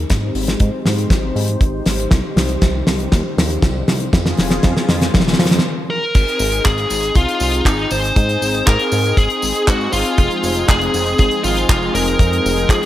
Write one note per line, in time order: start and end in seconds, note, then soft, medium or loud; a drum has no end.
0.00 4.09 D#4 medium
0.10 0.31 G#2 medium
0.10 2.10 G#3 medium
0.10 2.10 C4 medium
0.10 4.09 G4 medium
0.10 5.61 C5 medium
0.10 kick loud
0.10 snare medium
0.10 closed hi-hat medium
0.35 0.56 G#1 medium
0.35 open hi-hat loud
0.47 snare medium
0.47 closed hi-hat medium
0.60 0.71 G#2 loud
0.60 kick loud
0.60 closed hi-hat medium
0.85 1.06 G#2 medium
0.85 snare medium
0.85 open hi-hat medium
0.98 closed hi-hat medium
1.10 1.31 G#1 loud
1.10 kick loud
1.10 snare medium
1.10 closed hi-hat medium
1.36 1.57 G#2 loud
1.36 open hi-hat loud
1.48 closed hi-hat medium
1.61 1.82 G#1 medium
1.61 kick loud
1.61 closed hi-hat medium
1.86 2.07 G#1 medium
1.86 snare medium
1.86 open hi-hat loud
2.00 closed hi-hat medium
2.11 2.22 C2 loud
2.11 kick loud
2.11 snare medium
2.11 closed hi-hat medium
2.36 2.57 C2 loud
2.36 snare medium
2.36 open hi-hat loud
2.49 closed hi-hat medium
2.62 2.83 C2 loud
2.62 kick loud
2.62 snare medium
2.62 closed hi-hat medium
2.87 3.08 C2 medium
2.87 snare medium
2.87 open hi-hat medium
3.00 closed hi-hat medium
3.12 3.23 D#2 medium
3.12 kick loud
3.12 snare medium
3.12 closed hi-hat medium
3.37 3.58 D#2 medium
3.37 snare medium
3.37 open hi-hat loud
3.50 closed hi-hat medium
3.62 3.83 C2 loud
3.62 kick loud
3.62 snare medium
3.62 closed hi-hat medium
3.88 4.09 C2 medium
3.88 snare medium
3.88 open hi-hat loud
4.00 closed hi-hat medium
4.13 4.34 F2 medium
4.13 5.63 F4 medium
4.13 5.63 G#4 medium
4.13 kick loud
4.13 snare loud
4.13 closed hi-hat medium
4.26 snare medium
4.37 4.59 F1 medium
4.37 snare medium
4.37 open hi-hat loud
4.51 snare medium
4.51 closed hi-hat medium
4.63 4.74 F2 loud
4.63 kick loud
4.63 snare loud
4.63 closed hi-hat medium
4.77 snare medium
4.89 5.10 F2 medium
4.89 snare loud
4.89 open hi-hat medium
5.01 snare medium
5.01 closed hi-hat medium
5.14 5.35 F1 loud
5.14 kick loud
5.14 snare loud
5.14 closed hi-hat medium
5.20 snare loud
5.27 snare medium
5.33 snare medium
5.39 5.60 F2 loud
5.39 snare loud
5.39 open hi-hat loud
5.46 snare medium
5.51 snare medium
5.51 closed hi-hat medium
5.59 snare medium
5.90 6.68 A#4 loud
6.15 6.25 G#1 loud
6.15 12.86 C4 medium
6.15 10.14 D#4 medium
6.15 12.86 G#4 medium
6.15 kick loud
6.15 closed hi-hat loud
6.15 crash loud
6.15 tambourine soft
6.27 closed hi-hat medium
6.27 tambourine soft
6.39 6.61 G#1 loud
6.39 open hi-hat loud
6.39 tambourine medium
6.53 closed hi-hat medium
6.53 tambourine soft
6.65 6.86 G#1 loud
6.65 7.16 G#4 loud
6.65 kick loud
6.65 clap loud
6.65 closed hi-hat loud
6.65 tambourine soft
6.78 closed hi-hat medium
6.78 tambourine soft
6.90 7.11 G#1 medium
6.90 open hi-hat loud
6.90 tambourine medium
7.03 closed hi-hat medium
7.03 tambourine soft
7.15 7.26 C2 loud
7.15 7.68 F4 loud
7.15 kick loud
7.15 closed hi-hat loud
7.15 tambourine soft
7.29 closed hi-hat medium
7.29 tambourine soft
7.40 7.62 C2 medium
7.40 open hi-hat loud
7.40 tambourine medium
7.53 closed hi-hat medium
7.53 tambourine soft
7.65 7.86 G#1 loud
7.65 7.90 D#4 loud
7.65 kick loud
7.65 clap loud
7.65 closed hi-hat loud
7.65 tambourine soft
7.79 tambourine soft
7.91 8.12 G#1 medium
7.91 8.67 C5 loud
7.91 open hi-hat loud
7.91 tambourine medium
8.04 closed hi-hat medium
8.04 tambourine soft
8.16 8.37 G#2 medium
8.16 kick loud
8.16 closed hi-hat loud
8.16 tambourine soft
8.29 closed hi-hat medium
8.29 tambourine soft
8.42 8.63 G#1 medium
8.42 open hi-hat loud
8.42 tambourine medium
8.54 closed hi-hat medium
8.54 tambourine soft
8.67 8.77 G#2 loud
8.67 9.19 A#4 loud
8.67 kick loud
8.67 clap loud
8.67 closed hi-hat loud
8.67 tambourine soft
8.79 closed hi-hat medium
8.79 tambourine soft
8.92 9.13 G#2 medium
8.92 open hi-hat loud
8.92 tambourine medium
9.04 closed hi-hat medium
9.04 tambourine soft
9.17 9.28 G#1 medium
9.17 9.64 G#4 loud
9.17 kick loud
9.17 closed hi-hat medium
9.17 tambourine soft
9.30 closed hi-hat medium
9.30 tambourine soft
9.42 9.53 G#1 medium
9.42 open hi-hat loud
9.42 tambourine medium
9.55 closed hi-hat medium
9.55 tambourine soft
9.67 9.89 G#2 medium
9.67 9.92 F#4 loud
9.67 kick loud
9.67 clap loud
9.67 closed hi-hat loud
9.67 tambourine soft
9.81 tambourine soft
9.92 10.04 G#1 medium
9.92 10.68 F4 loud
9.92 open hi-hat loud
9.92 tambourine medium
10.06 closed hi-hat medium
10.06 tambourine soft
10.18 10.29 F1 loud
10.18 12.86 F3 medium
10.18 12.86 G#3 medium
10.18 12.86 D#4 medium
10.18 kick loud
10.18 closed hi-hat loud
10.18 tambourine soft
10.31 closed hi-hat medium
10.31 tambourine soft
10.43 10.64 F1 loud
10.43 open hi-hat loud
10.43 tambourine medium
10.55 closed hi-hat medium
10.55 tambourine soft
10.68 10.89 F1 loud
10.68 11.18 G#4 loud
10.68 kick loud
10.68 clap loud
10.68 closed hi-hat loud
10.68 tambourine soft
10.81 closed hi-hat medium
10.81 tambourine soft
10.94 11.15 F1 medium
10.94 open hi-hat medium
10.94 tambourine medium
11.06 closed hi-hat medium
11.06 tambourine soft
11.18 11.29 G#1 loud
11.18 11.44 G#4 loud
11.18 kick loud
11.18 closed hi-hat loud
11.18 tambourine soft
11.31 closed hi-hat medium
11.31 tambourine soft
11.44 11.65 G#1 medium
11.44 11.94 F4 loud
11.44 open hi-hat loud
11.44 tambourine medium
11.56 closed hi-hat medium
11.56 tambourine soft
11.69 11.90 F1 loud
11.69 kick loud
11.69 clap loud
11.69 closed hi-hat medium
11.69 tambourine soft
11.82 tambourine soft
11.95 12.16 F1 medium
11.95 12.70 A#4 loud
11.95 open hi-hat loud
11.95 tambourine medium
12.08 closed hi-hat medium
12.08 tambourine soft
12.19 12.40 F2 medium
12.19 kick loud
12.19 closed hi-hat medium
12.19 tambourine soft
12.33 closed hi-hat medium
12.33 tambourine soft
12.45 12.66 F1 medium
12.45 open hi-hat loud
12.45 tambourine medium
12.57 closed hi-hat medium
12.57 tambourine soft
12.69 12.80 F2 loud
12.69 12.86 G#4 medium
12.69 kick loud
12.69 clap loud
12.69 closed hi-hat loud
12.69 tambourine soft